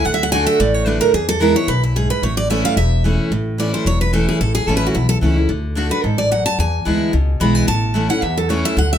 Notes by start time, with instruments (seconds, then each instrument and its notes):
0.05 upright bass D2, steel-string acoustic guitar D3 F#5
0.14 steel-string acoustic guitar E5
0.23 steel-string acoustic guitar F#5
0.32 steel-string acoustic guitar D3 A3 D4 F#4 G#5
0.47 steel-string acoustic guitar E5
0.60 upright bass A1, steel-string acoustic guitar A2 D5
0.74 steel-string acoustic guitar C#5
0.86 steel-string acoustic guitar D3 A3 D4 F#4 B4
1.01 steel-string acoustic guitar A#4
1.14 upright bass E2, steel-string acoustic guitar E2 G#4
1.29 steel-string acoustic guitar A4
1.40 steel-string acoustic guitar E3 G#3 B3 E4 A#4
1.54 steel-string acoustic guitar B3 E4 C#5
1.68 upright bass B1, steel-string acoustic guitar F#2 B4
1.83 steel-string acoustic guitar E4
1.96 steel-string acoustic guitar G#2 G#4
2.10 steel-string acoustic guitar B4
2.22 upright bass A1, steel-string acoustic guitar A2 C#5
2.37 steel-string acoustic guitar D5
2.50 steel-string acoustic guitar E3 A3 C#4 E4 E5
2.65 steel-string acoustic guitar F5
2.76 upright bass E1, steel-string acoustic guitar E2 E5
3.04 steel-string acoustic guitar E3 A3 C#4 E4
3.31 upright bass A1, steel-string acoustic guitar A2
3.58 steel-string acoustic guitar E3 A3 C#4 E4 D5
3.74 steel-string acoustic guitar C5
3.85 upright bass E1, steel-string acoustic guitar E2 C#5
4.01 steel-string acoustic guitar B4
4.13 steel-string acoustic guitar E3 A3 C#4 E4 A4
4.29 steel-string acoustic guitar G#4
4.40 upright bass A1, steel-string acoustic guitar A2 A4
4.55 steel-string acoustic guitar G#4
4.67 upright bass A1, steel-string acoustic guitar E3 A3 C#4 E4 A4
4.77 steel-string acoustic guitar B4
4.87 steel-string acoustic guitar F#4
4.95 upright bass B1, steel-string acoustic guitar E2 E4
5.09 steel-string acoustic guitar A4
5.21 upright bass C#2, steel-string acoustic guitar E3 A3 C#4 E4
5.36 steel-string acoustic guitar C#4 E4
5.49 upright bass D2, steel-string acoustic guitar D3
5.75 steel-string acoustic guitar D3 A3 D4 F#4
5.89 steel-string acoustic guitar D4 F#4 B4
6.04 upright bass A1, steel-string acoustic guitar G#2 A4
6.18 steel-string acoustic guitar D5
6.31 steel-string acoustic guitar F#2 F#5
6.46 steel-string acoustic guitar A5
6.58 upright bass E2, steel-string acoustic guitar E2 G#5
6.85 upright bass D2, steel-string acoustic guitar E3 G#3 B3 E4
7.13 upright bass C#2, steel-string acoustic guitar B2
7.40 upright bass B1, steel-string acoustic guitar E3 G#3 B3 E4 B5
7.55 steel-string acoustic guitar G#5
7.67 upright bass A1, steel-string acoustic guitar A2 A5
7.94 steel-string acoustic guitar E3 A3 C#4 E4
8.09 steel-string acoustic guitar C#4 E4 F#5
8.22 steel-string acoustic guitar E2 E5, upright bass E2
8.37 steel-string acoustic guitar A4
8.49 steel-string acoustic guitar E3 A3 C#4 E4 C#5
8.65 steel-string acoustic guitar E5
8.77 upright bass D2, steel-string acoustic guitar D3 F#5
8.93 steel-string acoustic guitar E5